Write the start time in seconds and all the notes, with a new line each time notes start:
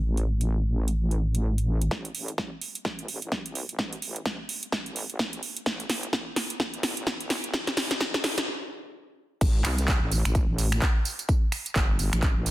Already playing: A1
0.17 closed hi-hat
0.41 closed hi-hat
0.88 closed hi-hat
1.11 closed hi-hat
1.35 closed hi-hat
1.58 closed hi-hat
1.82 closed hi-hat
1.91 A1, kick, snare
2.05 closed hi-hat
2.15 A1, open hi-hat
2.28 closed hi-hat
2.38 kick, snare
2.62 open hi-hat
2.75 closed hi-hat
2.85 kick, snare
2.99 A1, closed hi-hat
3.08 open hi-hat
3.22 closed hi-hat
3.32 G1, kick, snare
3.46 C2, closed hi-hat
3.55 open hi-hat
3.69 A1, closed hi-hat
3.79 A1, kick, snare
3.93 closed hi-hat
4.02 A1, open hi-hat
4.16 closed hi-hat
4.26 kick, snare
4.49 open hi-hat
4.63 closed hi-hat
4.72 kick, snare
4.86 A1, closed hi-hat
4.96 open hi-hat
5.10 A1, closed hi-hat
5.19 kick, snare
5.33 closed hi-hat
5.43 open hi-hat
5.57 closed hi-hat
5.66 A1, kick, snare
5.80 closed hi-hat
5.90 A1, snare, open hi-hat
6.03 closed hi-hat
6.13 kick, snare
6.36 snare, open hi-hat
6.50 closed hi-hat
6.60 kick, snare
6.74 A1, closed hi-hat
6.83 snare, open hi-hat
6.97 closed hi-hat
7.07 G1, kick, snare
7.21 C2, closed hi-hat
7.30 snare, open hi-hat
7.44 A1, closed hi-hat
7.54 A1, kick, snare
7.67 snare, closed hi-hat
7.77 A1, snare, open hi-hat
7.91 snare, closed hi-hat
8.01 kick, snare
8.14 A1, snare
8.24 snare, open hi-hat
8.38 snare, closed hi-hat
9.41 A1, kick, closed hi-hat, crash, tambourine
9.65 C2, finger snap, clap, open hi-hat, tambourine
9.78 closed hi-hat, tambourine
9.88 kick, clap, closed hi-hat, tambourine
10.02 A1
10.12 open hi-hat, tambourine
10.25 A1, finger snap, closed hi-hat, tambourine
10.35 kick, closed hi-hat, tambourine
10.49 A1
10.58 open hi-hat, tambourine
10.72 finger snap, closed hi-hat, tambourine
10.82 kick, clap, closed hi-hat, tambourine
11.05 open hi-hat, tambourine
11.19 closed hi-hat, tambourine
11.29 kick, closed hi-hat, tambourine
11.52 finger snap, open hi-hat, tambourine
11.66 closed hi-hat, tambourine
11.76 G1, kick, clap, closed hi-hat, tambourine
11.99 open hi-hat, tambourine
12.13 A1, finger snap, closed hi-hat, tambourine
12.22 kick, clap, closed hi-hat, tambourine
12.36 A1
12.46 open hi-hat, tambourine